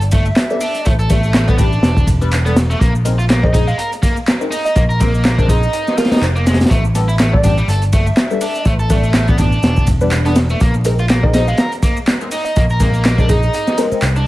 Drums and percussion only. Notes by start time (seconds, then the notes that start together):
0.01 closed hi-hat, shaker
0.12 kick, closed hi-hat, ride, shaker
0.26 shaker
0.36 snare, clap, closed hi-hat, shaker
0.50 shaker
0.61 open hi-hat, ride, shaker
0.74 closed hi-hat, shaker
0.85 kick, closed hi-hat, shaker
0.99 shaker
1.10 kick, closed hi-hat, ride, shaker
1.23 shaker
1.34 snare, clap, closed hi-hat, shaker
1.48 kick, shaker
1.58 kick, closed hi-hat, ride, shaker
1.73 shaker
1.83 snare, closed hi-hat, shaker
1.97 kick, shaker
2.07 kick, closed hi-hat, ride, shaker
2.22 shaker
2.31 clap, closed hi-hat, ride, shaker
2.46 closed hi-hat, shaker
2.56 snare, closed hi-hat, ride, shaker
2.71 shaker
2.81 kick, closed hi-hat, shaker
2.95 shaker
3.05 closed hi-hat, ride, shaker
3.19 shaker
3.29 snare, clap, closed hi-hat, shaker
3.44 kick
3.54 kick, closed hi-hat, ride, shaker
3.68 shaker
3.79 closed hi-hat, shaker
3.92 closed hi-hat, shaker
4.03 kick, closed hi-hat, ride, shaker
4.17 shaker
4.27 snare, clap, closed hi-hat, shaker
4.41 shaker
4.52 open hi-hat, ride, shaker
4.66 closed hi-hat, shaker
4.76 kick, closed hi-hat, shaker
4.90 shaker
5.00 kick, closed hi-hat, ride, shaker
5.14 shaker
5.25 snare, clap, closed hi-hat, shaker
5.38 kick, shaker
5.49 kick, closed hi-hat, ride, shaker
5.63 shaker
5.73 closed hi-hat, shaker
5.87 snare, shaker
5.98 snare, closed hi-hat, ride, shaker
6.05 snare, closed hi-hat
6.12 snare, closed hi-hat, shaker
6.16 snare, closed hi-hat
6.23 clap, closed hi-hat, ride, shaker
6.36 shaker
6.47 snare, closed hi-hat, ride, shaker
6.54 snare, closed hi-hat
6.60 snare, closed hi-hat, shaker
6.66 snare, closed hi-hat
6.71 kick, closed hi-hat, shaker
6.85 shaker
6.95 closed hi-hat, ride, shaker
7.09 shaker
7.19 snare, clap, closed hi-hat, shaker
7.34 kick
7.44 kick, closed hi-hat, ride, shaker
7.58 shaker
7.68 closed hi-hat, shaker
7.82 closed hi-hat, shaker
7.93 kick, closed hi-hat, ride, shaker
8.07 shaker
8.17 snare, clap, closed hi-hat, shaker
8.31 shaker
8.41 open hi-hat, ride, shaker
8.55 closed hi-hat, shaker
8.65 kick, closed hi-hat, shaker
8.79 shaker
8.90 kick, closed hi-hat, ride, shaker
9.03 shaker
9.14 snare, clap, closed hi-hat, shaker
9.28 kick, shaker
9.38 kick, closed hi-hat, ride, shaker
9.52 shaker
9.63 snare, closed hi-hat, shaker
9.77 kick, shaker
9.87 kick, closed hi-hat, ride, shaker
10.01 shaker
10.11 clap, closed hi-hat, ride, shaker
10.25 closed hi-hat, shaker
10.36 snare, closed hi-hat, ride, shaker
10.50 shaker
10.60 kick, closed hi-hat, shaker
10.74 shaker
10.85 closed hi-hat, ride, shaker
10.99 shaker
11.09 snare, clap, closed hi-hat, shaker
11.23 kick
11.33 snare, closed hi-hat, ride, shaker
11.48 shaker
11.57 snare, closed hi-hat, shaker
11.72 closed hi-hat, shaker
11.82 kick, closed hi-hat, ride, shaker
11.97 shaker
12.07 snare, clap, closed hi-hat, shaker
12.21 shaker
12.31 open hi-hat, ride, shaker
12.45 closed hi-hat, shaker
12.56 kick, closed hi-hat, shaker
12.70 shaker
12.80 kick, closed hi-hat, ride, shaker
12.94 shaker
13.05 snare, clap, closed hi-hat, shaker
13.18 kick, shaker
13.29 kick, closed hi-hat, ride, shaker
13.43 shaker
13.53 closed hi-hat, shaker
13.67 snare, shaker
13.78 snare, closed hi-hat, ride, shaker
13.92 shaker
14.02 clap, closed hi-hat, ride, shaker
14.16 shaker